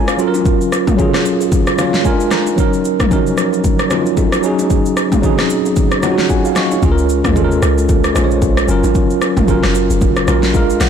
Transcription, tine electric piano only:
0.00 0.21 G#3 medium
0.00 0.19 C#4 medium
0.00 0.21 E4 medium
0.00 0.20 F4 medium
0.00 0.20 A#4 loud
0.00 0.21 C#5 medium
0.00 0.21 G#5 medium
0.00 0.21 A#5 medium
0.08 0.33 F5 medium
0.17 0.84 F#3 medium
0.17 0.84 C#4 medium
0.17 0.85 F4 medium
0.17 0.27 A4 medium
0.28 0.89 A#4 loud
0.97 1.63 F#3 medium
0.97 1.64 C#4 medium
0.97 1.64 F4 medium
0.97 1.65 G#4 medium
1.77 2.04 F#3 medium
1.77 2.04 C#4 medium
1.77 2.05 F4 medium
1.77 2.06 C#5 medium
1.77 2.03 F5 medium
2.03 2.48 G#3 medium
2.03 2.12 C#4 medium
2.03 2.50 F4 medium
2.03 2.50 A#4 loud
2.03 2.30 G#5 medium
2.11 2.52 D4 medium
2.56 3.01 F#3 medium
2.56 3.02 C#4 medium
2.56 3.02 D#4 medium
2.56 3.03 A#4 loud
3.09 3.18 F3 medium
3.09 3.76 C#4 medium
3.09 3.77 D#4 medium
3.09 3.78 A#4 medium
3.16 3.79 F#3 medium
3.89 4.41 F#3 medium
3.89 4.42 C#4 medium
3.89 4.44 D#4 medium
3.89 4.45 F4 medium
4.42 5.08 F#3 medium
4.42 5.09 C#4 medium
4.42 5.10 D#4 medium
4.42 5.10 G#4 loud
5.22 5.88 F#3 medium
5.22 5.31 C4 medium
5.22 5.89 D#4 medium
5.22 5.90 G#4 medium
5.29 5.92 C#4 medium
6.01 6.68 F#3 medium
6.01 6.68 C#4 medium
6.01 6.69 D#4 medium
6.01 6.12 F4 medium
6.01 6.28 F#5 medium
6.12 6.73 F#4 medium
6.30 6.45 F#5 medium
6.30 6.55 G#5 medium
6.45 6.56 F5 medium
6.57 6.71 D#5 medium
6.57 6.81 C#6 medium
6.72 6.97 C#5 medium
6.81 7.26 G#3 medium
6.81 7.27 C#4 medium
6.81 7.27 F4 medium
6.81 6.91 G#4 medium
6.92 7.31 A#4 loud
7.34 8.00 G#3 medium
7.34 8.01 C#4 medium
7.34 8.02 F4 medium
7.34 7.44 A4 medium
7.44 8.06 A#4 medium
8.14 8.68 G#3 medium
8.14 8.67 C#4 medium
8.14 8.68 F4 medium
8.14 8.24 C5 medium
8.24 8.73 C#5 medium
8.67 9.33 F#3 medium
8.67 9.34 C#4 medium
8.67 9.34 F4 medium
8.67 9.35 A#4 loud
9.47 10.13 F#3 medium
9.47 10.13 C#4 medium
9.47 10.14 F4 medium
9.47 10.15 A#4 medium
10.26 10.54 F#3 medium
10.26 10.54 C#4 medium
10.26 10.54 F4 medium
10.26 10.55 A#4 medium
10.53 10.89 G#3 medium
10.53 10.89 D4 medium
10.53 10.89 F4 medium
10.53 10.79 F5 medium
10.57 10.89 A#4 loud
10.81 10.89 F#5 medium

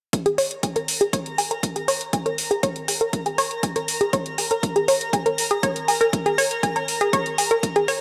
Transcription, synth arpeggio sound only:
0.26 0.31 G#4 medium
0.38 0.50 C#5 loud
0.63 0.72 G#5 medium
0.76 0.84 A#4 medium
1.01 1.06 G#4 medium
1.13 1.25 C#5 loud
1.38 1.47 G#5 medium
1.51 1.59 A#4 medium
1.76 1.81 G#4 medium
1.88 2.00 C#5 loud
2.13 2.22 G#5 medium
2.26 2.34 A#4 medium
2.51 2.56 G#4 medium
2.63 2.75 C#5 loud
2.88 2.97 G#5 medium
3.01 3.09 A#4 medium
3.26 3.31 G#4 medium
3.38 3.50 C#5 loud
3.63 3.72 G#5 medium
3.76 3.84 A#4 medium
4.01 4.06 G#4 medium
4.13 4.25 C#5 loud
4.38 4.47 G#5 medium
4.51 4.59 A#4 medium
4.76 4.81 G#4 medium
4.88 5.00 C#5 loud
5.13 5.22 G#5 medium
5.26 5.34 A#4 medium
5.51 5.56 G#4 medium
5.63 5.75 C#5 medium
5.88 5.97 G#5 medium
6.01 6.09 A#4 medium
6.26 6.31 G#4 medium
6.38 6.50 C#5 loud
6.63 6.72 G#5 medium
6.76 6.84 A#4 medium
7.01 7.06 G#4 medium
7.13 7.25 C#5 loud
7.38 7.47 G#5 medium
7.51 7.59 A#4 medium
7.76 7.81 G#4 medium
7.88 8.00 C#5 loud

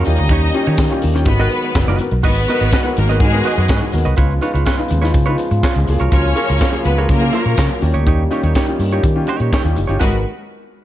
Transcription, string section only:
0.03 0.99 D#4 loud
0.03 1.00 D#5 loud
1.25 1.97 B3 loud
1.25 1.97 B4 loud
2.24 2.93 B3 loud
2.24 2.93 B4 loud
2.97 3.16 A#3 loud
2.97 3.16 A#4 loud
3.20 3.89 G#3 loud
3.20 3.89 G#4 loud
6.12 6.81 C#4 loud
6.12 6.81 C#5 loud
6.85 7.04 B3 medium
6.85 7.04 B4 loud
7.10 7.79 A#3 loud
7.10 7.79 A#4 loud
10.01 10.24 G#3 medium
10.01 10.24 F#4 medium
10.01 10.23 B4 medium

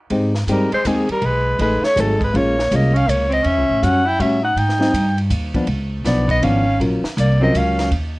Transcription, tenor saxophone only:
0.48 0.70 G3 medium
0.72 0.87 G#3 medium
0.86 1.09 D#3 medium
1.10 1.25 G3 medium
1.23 1.58 G#3 medium
1.59 1.84 G#3 medium
1.83 1.98 A3 medium
1.96 2.17 F#3 medium
2.18 2.36 G#3 medium
2.34 2.71 A#3 medium
2.71 2.95 A#3 medium
2.93 3.08 C#4 medium
3.07 3.28 A#3 medium
3.29 3.45 C4 medium
3.43 3.82 C#4 medium
3.82 4.06 C#4 medium
4.05 4.21 E4 medium
4.19 4.41 C#4 medium
4.42 4.55 D#4 medium
4.55 5.17 D#4 medium
6.05 6.27 B3 medium
6.27 6.43 B3 medium
6.42 6.79 C#4 medium
7.18 7.39 A#3 medium
7.40 7.56 C4 medium
7.54 7.92 C#4 medium

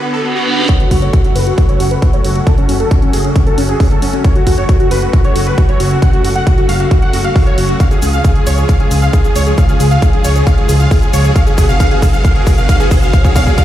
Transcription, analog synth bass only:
0.91 1.08 F#1 loud
1.36 1.53 F#1 medium
1.80 1.97 F#1 medium
2.24 2.42 F#1 medium
2.69 2.86 F#1 loud
3.13 3.31 F#1 medium
3.58 3.75 F#1 medium
4.02 4.19 F#1 medium
4.47 4.64 F#1 loud
4.91 5.08 F#1 medium
5.36 5.53 F#1 medium
5.80 5.97 F#1 medium
6.25 6.42 F#1 loud
6.69 6.86 F#1 loud
7.13 7.31 F#1 medium
7.58 7.75 F#1 medium
8.02 8.19 C#2 loud
8.47 8.64 C#2 medium
8.91 9.08 C#2 medium
9.36 9.53 C#2 medium
9.80 9.97 C#2 loud
10.24 10.42 C#2 medium
10.69 10.86 C#2 loud
11.13 11.31 C#2 medium
11.58 11.75 B1 loud
12.02 12.19 B1 medium
12.47 12.64 B1 medium
12.91 13.08 B1 medium
13.36 13.53 B1 loud

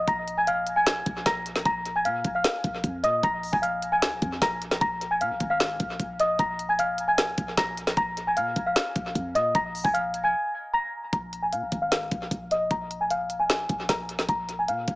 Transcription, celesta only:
0.08 0.36 A#5 medium
0.08 0.36 A#6 medium
0.37 0.47 G#5 medium
0.37 0.47 G#6 medium
0.47 0.75 F5 medium
0.47 0.75 F6 medium
0.76 1.23 G#5 medium
0.76 1.23 G#6 medium
1.26 1.45 A#5 medium
1.26 1.45 A#6 medium
1.66 1.93 A#5 loud
1.66 1.94 A#6 medium
1.96 2.05 G#5 medium
1.96 2.05 G#6 medium
2.05 2.33 F5 medium
2.05 2.33 F6 medium
2.35 3.00 F5 medium
2.35 3.00 F6 medium
3.03 3.22 D#5 medium
3.03 3.23 D#6 medium
3.23 3.51 A#5 loud
3.23 3.52 A#6 medium
3.53 3.62 G#5 medium
3.53 3.62 G#6 medium
3.62 3.90 F5 medium
3.62 3.91 F6 medium
3.92 4.39 G#5 medium
3.92 4.39 G#6 medium
4.42 4.61 A#5 medium
4.42 4.61 A#6 medium
4.81 5.09 A#5 loud
4.81 5.09 A#6 medium
5.11 5.20 G#5 medium
5.11 5.21 G#6 medium
5.21 5.49 F5 medium
5.21 5.49 F6 medium
5.50 6.15 F5 medium
5.50 6.16 F6 medium
6.20 6.38 D#5 medium
6.20 6.39 D#6 medium
6.39 6.67 A#5 medium
6.39 6.67 A#6 medium
6.69 6.78 G#5 medium
6.69 6.79 G#6 medium
6.79 7.07 F5 medium
6.79 7.07 F6 medium
7.08 7.54 G#5 medium
7.08 7.55 G#6 medium
7.57 7.76 A#5 medium
7.57 7.77 A#6 medium
7.97 8.25 A#5 loud
7.97 8.25 A#6 medium
8.27 8.36 G#5 medium
8.27 8.37 G#6 medium
8.37 8.64 F5 medium
8.37 8.65 F6 medium
8.66 9.31 F5 medium
8.66 9.32 F6 medium
9.35 9.54 D#5 medium
9.35 9.54 D#6 medium
9.55 9.83 A#5 medium
9.55 9.83 A#6 medium
9.84 9.94 G#5 medium
9.84 9.94 G#6 medium
9.94 10.22 F5 medium
9.94 10.22 F6 medium
10.24 10.70 G#5 medium
10.24 10.71 G#6 medium
10.73 10.92 A#5 medium
10.73 10.93 A#6 medium
11.13 11.41 A#5 loud
11.13 11.41 A#6 medium
11.42 11.52 G#5 medium
11.42 11.52 G#6 medium
11.53 11.80 F5 medium
11.53 11.81 F6 medium
11.82 12.47 F5 medium
11.82 12.47 F6 medium
12.51 12.70 D#5 medium
12.51 12.70 D#6 medium
12.71 12.99 A#5 medium
12.71 12.99 A#6 medium
13.01 13.10 G#5 medium
13.01 13.10 G#6 medium
13.10 13.38 F5 medium
13.10 13.39 F6 medium
13.39 13.86 G#5 medium
13.39 13.86 G#6 medium
13.89 14.08 A#5 medium
13.89 14.08 A#6 medium
14.29 14.57 A#5 loud
14.29 14.57 A#6 medium
14.59 14.68 G#5 medium
14.59 14.68 G#6 medium
14.68 14.95 F5 medium
14.68 14.95 F6 medium

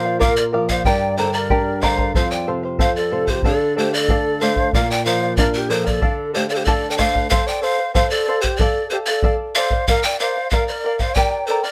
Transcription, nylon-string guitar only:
0.00 0.82 A#2 medium
0.00 0.20 F3 medium
0.21 0.53 F4 medium
0.54 0.85 F3 medium
0.86 2.11 G2 medium
1.19 1.50 D3 medium
1.52 1.82 D4 medium
1.83 2.14 D3 medium
2.16 3.40 F2 medium
2.48 2.79 C3 soft
2.79 3.11 C4 medium
3.12 3.43 C3 medium
3.45 4.70 D3 medium
3.77 4.08 A3 soft
4.11 4.41 A4 medium
4.42 4.72 A3 medium
4.75 5.99 A#2 medium
5.06 5.37 F3 soft
5.38 5.69 D4 medium
5.70 6.01 F3 medium
6.02 7.27 D3 medium
6.36 6.66 A3 medium
6.68 6.98 A4 medium
6.99 7.30 A3 medium

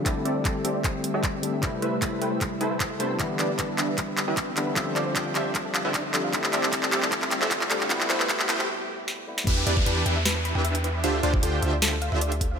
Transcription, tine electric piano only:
0.04 1.40 D3 medium
0.04 1.40 G3 medium
0.04 1.41 A3 medium
0.04 1.41 C4 medium
0.08 1.42 E4 loud
1.42 1.59 D3 medium
1.42 1.59 G3 medium
1.42 1.60 A3 medium
1.42 1.60 C4 medium
1.42 1.60 D4 medium
1.61 2.97 C3 medium
1.61 2.97 G3 medium
1.61 2.98 A3 medium
1.65 2.99 E4 loud
2.99 3.16 C3 medium
2.99 3.16 G3 medium
2.99 3.17 A3 medium
2.99 3.17 B3 medium
2.99 3.17 D4 medium
3.18 4.54 D3 medium
3.18 4.54 E3 medium
3.18 4.55 G3 medium
3.18 4.55 B3 medium
3.18 4.56 E4 loud
4.56 4.73 D3 medium
4.56 4.73 E3 medium
4.56 4.73 G3 medium
4.56 4.74 B3 medium
4.56 4.74 D4 loud
4.74 6.10 D3 medium
4.74 6.11 F3 medium
4.74 6.11 G3 medium
4.74 6.12 C4 medium
4.74 6.12 E5 loud
6.13 6.30 D3 medium
6.13 6.30 F3 medium
6.13 6.30 G3 medium
6.13 6.31 C4 medium
6.13 6.31 D4 loud
6.31 7.67 D3 loud
6.31 7.68 G3 medium
6.31 7.68 A3 medium
6.31 7.69 C4 medium
6.35 7.69 E4 loud
7.70 7.87 D3 medium
7.70 7.87 G3 medium
7.70 7.87 A3 medium
7.70 7.87 C4 medium
7.70 7.88 D4 loud
7.88 9.24 C3 loud
7.88 9.25 G3 medium
7.88 9.25 A3 medium
7.88 9.26 B3 medium
7.88 9.26 E4 loud
9.27 9.44 C3 medium
9.27 9.45 G3 medium
9.27 9.45 A3 medium
9.27 9.45 B3 medium
9.27 9.45 E4 medium

